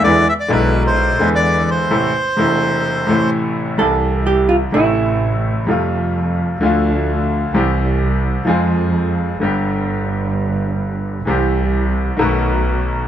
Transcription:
<<
  \new Staff \with { instrumentName = "Bandoneon" } { \time 4/4 \key a \minor \tempo 4 = 128 d''8 e''16 d''16 b'8. c''4 d''8. c''8~ | c''2. r4 | \key c \major r1 | r1 |
r1 | r1 | r1 | }
  \new Staff \with { instrumentName = "Hollow-body jazz guitar" } { \time 4/4 \key a \minor r1 | r1 | \key c \major a'4 g'8 f'8 e'2 | r1 |
r1 | r1 | r1 | }
  \new Staff \with { instrumentName = "Grand piano" } { \clef bass \time 4/4 \key a \minor <e, d e gis b e'>8 r8 <b,, b, d gis d' e'>4. <e, d e gis b e'>4. | <a,, a, c e a e'>8 r8 <e,, e, c e a e'>4. <a,, a, c e a e'>4. | \key c \major <c, c e g e'>2 <a,, a, c e a e'>2 | <f, c f g a f'>2 <d, d f a f'>2 |
<c, c e g c' g'>2 <f, f aes c' aes'>2 | <g,, g, d g b g'>1 | <c, c e g c' g'>2 <b,, b, dis a b fis'>2 | }
  \new Staff \with { instrumentName = "Double bass" } { \clef bass \time 4/4 \key a \minor e,8 r8 b,,4. e,4. | r1 | \key c \major c,2 a,,2 | f,2 d,2 |
c,2 f,2 | g,,1 | c,2 b,,2 | }
>>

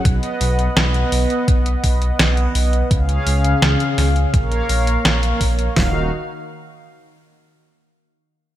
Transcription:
<<
  \new Staff \with { instrumentName = "Analog synth pad" } { \time 4/4 \key ees \minor \tempo 4 = 84 <b b' dis'' ges''>1 | <des des' aes' f''>2 <bes bes' des'' f''>2 | <ees ees' ges' f''>8 r2. r8 | }
  \new Staff \with { instrumentName = "Detuned saw bass" } { \clef bass \time 4/4 \key ees \minor b,,8 b,,8 b,,8 b,,8 b,,8 b,,8 b,,8 b,,8 | des,8 des,8 des,8 des,8 bes,,8 bes,,8 bes,,8 bes,,8 | ees,,8 r2. r8 | }
  \new DrumStaff \with { instrumentName = "Drums" } \drummode { \time 4/4 <hh bd>16 hh16 hho16 hh16 <hh sn>16 hh16 hho16 hh16 <hh bd>16 hh16 <hho bd>16 hh16 <hh sn>16 hh16 hho16 hh16 | <hh bd>16 hh16 hho16 hh16 <hh sn>16 hh16 <hho sn>16 hh16 <hh bd>16 hh16 hho16 hh16 <hh sn>16 hh16 <hho bd>16 hh16 | <hho sn tomfh>4 r4 r4 r4 | }
>>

